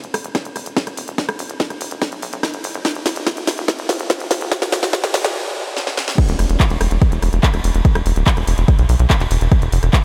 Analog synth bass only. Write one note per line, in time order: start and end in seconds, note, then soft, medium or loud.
0.04 0.11 E1 medium
0.14 0.21 E1 loud
0.24 0.31 E1 medium
0.45 0.52 E1 medium
0.56 0.63 E1 loud
0.66 0.73 E1 medium
0.87 0.94 E1 medium
0.97 1.04 E1 loud
1.08 1.15 E1 loud
1.29 1.36 E1 medium
1.39 1.46 E1 loud
1.49 1.56 D1 medium
1.70 1.77 E1 medium
1.81 1.88 E1 loud
1.91 1.98 E1 medium
2.12 2.19 B1 medium
2.22 2.29 B1 loud
2.33 2.40 B1 medium
2.54 2.61 G1 medium
2.64 2.71 G1 loud
2.74 2.81 G1 loud
2.95 3.02 E1 medium
3.06 3.13 F1 loud
3.16 3.23 E1 medium
3.37 3.44 E1 medium
3.47 3.54 E1 loud
3.58 3.65 E1 loud
3.79 3.86 E1 medium
3.89 3.96 E1 loud
3.99 4.06 E1 medium
4.20 4.27 E1 medium
4.31 4.38 E1 loud
4.41 4.48 E1 loud
4.62 4.69 E1 medium
4.72 4.79 E1 loud
4.83 4.90 D1 medium
5.04 5.11 E1 medium
5.14 5.21 E1 loud
5.24 5.31 E1 medium
6.29 6.36 E1 medium
6.39 6.46 F1 loud
6.49 6.56 E1 medium
6.70 6.77 E1 medium
6.81 6.88 E1 loud
6.91 6.98 E1 loud
7.12 7.19 E1 medium
7.22 7.29 E1 loud
7.33 7.40 E1 medium
7.54 7.61 E1 medium
7.64 7.71 E1 loud
7.75 7.81 E1 medium
7.95 8.02 E1 medium
8.06 8.13 E1 loud
8.16 8.23 D1 medium
8.37 8.44 E1 medium
8.47 8.54 E1 loud
8.58 8.65 E1 loud
8.79 8.86 B1 medium
8.89 8.96 B1 loud
8.99 9.06 B1 medium
9.20 9.27 E1 medium
9.31 9.38 E1 loud
9.41 9.48 E1 medium
9.62 9.69 E1 medium
9.72 9.79 F1 loud
9.83 9.90 E1 medium